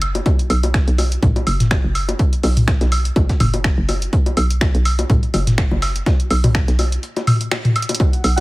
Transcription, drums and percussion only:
0.02 closed hi-hat medium
0.02 high woodblock medium
0.15 closed hi-hat medium
0.15 low bongo soft
0.26 kick loud
0.26 closed hi-hat medium
0.26 low bongo soft
0.39 closed hi-hat soft
0.50 closed hi-hat medium
0.50 open hi-hat medium
0.50 high woodblock medium
0.63 closed hi-hat medium
0.63 low bongo soft
0.74 finger snap medium
0.74 kick loud
0.74 snare loud
0.74 closed hi-hat medium
0.88 closed hi-hat soft
0.98 closed hi-hat medium
0.98 open hi-hat medium
0.98 low bongo soft
0.98 high woodblock soft
1.12 closed hi-hat soft
1.22 kick loud
1.22 closed hi-hat medium
1.22 mid tom medium
1.36 closed hi-hat soft
1.36 low bongo soft
1.47 closed hi-hat medium
1.47 open hi-hat medium
1.47 high woodblock medium
1.60 snare soft
1.60 closed hi-hat medium
1.60 mid tom medium
1.71 finger snap loud
1.71 kick loud
1.71 snare loud
1.71 closed hi-hat medium
1.71 low bongo soft
1.95 closed hi-hat medium
1.95 open hi-hat medium
1.95 high woodblock medium
2.09 closed hi-hat medium
2.09 low bongo soft
2.19 kick loud
2.19 closed hi-hat medium
2.33 closed hi-hat soft
2.43 open hi-hat medium
2.43 low bongo soft
2.43 high woodblock soft
2.57 closed hi-hat medium
2.57 mid tom medium
2.68 finger snap medium
2.68 kick loud
2.68 snare loud
2.68 closed hi-hat medium
2.81 snare soft
2.81 closed hi-hat soft
2.81 low bongo soft
2.92 closed hi-hat medium
2.92 open hi-hat medium
2.92 high woodblock medium
3.05 closed hi-hat medium
3.16 kick loud
3.16 closed hi-hat medium
3.16 low bongo soft
3.29 kick medium
3.29 snare medium
3.29 closed hi-hat soft
3.40 closed hi-hat medium
3.40 mid tom medium
3.40 open hi-hat medium
3.40 high woodblock medium
3.54 closed hi-hat medium
3.54 low bongo soft
3.64 finger snap medium
3.64 kick loud
3.64 snare loud
3.64 closed hi-hat medium
3.89 closed hi-hat medium
3.89 open hi-hat medium
3.89 low bongo soft
3.89 high woodblock soft
4.02 closed hi-hat medium
4.13 kick loud
4.13 closed hi-hat medium
4.26 closed hi-hat soft
4.26 low bongo soft
4.37 closed hi-hat medium
4.37 open hi-hat loud
4.37 high woodblock medium
4.50 closed hi-hat medium
4.61 finger snap medium
4.61 kick loud
4.61 snare loud
4.61 closed hi-hat medium
4.61 low bongo soft
4.75 closed hi-hat soft
4.85 closed hi-hat medium
4.85 open hi-hat medium
4.85 high woodblock medium
4.99 closed hi-hat medium
4.99 low bongo soft
5.10 kick loud
5.10 closed hi-hat medium
5.10 mid tom medium
5.23 closed hi-hat soft
5.34 closed hi-hat medium
5.34 open hi-hat loud
5.34 low bongo soft
5.34 high woodblock soft
5.47 snare soft
5.47 closed hi-hat medium
5.47 mid tom medium
5.58 finger snap loud
5.58 kick loud
5.58 snare loud
5.58 closed hi-hat medium
5.71 low bongo soft
5.82 snare loud
5.82 closed hi-hat medium
5.82 open hi-hat medium
5.82 high woodblock medium
5.96 closed hi-hat medium
6.06 kick loud
6.06 snare loud
6.06 closed hi-hat medium
6.06 low bongo soft
6.20 closed hi-hat soft
6.30 open hi-hat medium
6.30 high woodblock medium
6.44 closed hi-hat medium
6.44 mid tom medium
6.44 low bongo soft
6.55 finger snap medium
6.55 kick loud
6.55 snare loud
6.55 closed hi-hat medium
6.68 snare soft
6.68 closed hi-hat soft
6.79 closed hi-hat medium
6.79 open hi-hat medium
6.79 low bongo soft
6.79 high woodblock soft
6.92 closed hi-hat medium
7.03 closed hi-hat medium
7.16 snare medium
7.16 closed hi-hat soft
7.16 low bongo soft
7.27 mid tom medium
7.27 open hi-hat medium
7.27 high woodblock medium
7.41 closed hi-hat medium
7.51 finger snap loud
7.51 snare loud
7.51 closed hi-hat medium
7.51 low bongo soft
7.65 closed hi-hat soft
7.65 mid tom medium
7.76 closed hi-hat medium
7.76 high woodblock medium
7.82 closed hi-hat medium
7.89 closed hi-hat medium
7.89 low bongo soft
7.95 closed hi-hat medium
8.00 kick loud
8.00 closed hi-hat medium
8.00 low bongo soft
8.13 closed hi-hat soft
8.24 closed hi-hat medium
8.24 open hi-hat medium
8.24 high woodblock medium

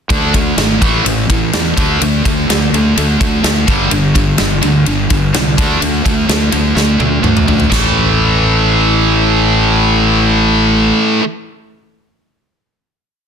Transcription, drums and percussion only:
0.10 kick loud
0.10 ride medium
0.34 kick medium
0.34 ride medium
0.58 snare loud
0.58 ride medium
0.82 kick loud
0.82 ride medium
1.06 ride medium
1.30 kick medium
1.30 ride medium
1.53 snare loud
1.53 ride medium
1.77 kick loud
1.77 ride medium
2.01 ride medium
2.25 kick medium
2.25 ride medium
2.50 snare loud
2.50 ride medium
2.74 ride medium
2.97 ride medium
3.21 kick medium
3.21 ride medium
3.44 snare loud
3.44 ride medium
3.68 kick loud
3.68 ride medium
3.91 ride medium
4.15 kick medium
4.15 ride medium
4.38 snare loud
4.38 ride medium
4.62 ride medium
4.86 ride medium
5.10 kick medium
5.10 ride medium
5.34 snare medium
5.34 ride medium
5.58 kick loud
5.58 ride medium
5.82 ride medium
6.06 kick medium
6.06 ride medium
6.29 snare loud
6.29 ride medium
6.52 ride medium
6.77 snare medium
7.00 high tom medium
7.24 mid tom medium
7.37 mid tom medium
7.48 floor tom loud
7.60 floor tom medium
7.72 kick medium
7.72 snare medium
7.72 splash medium

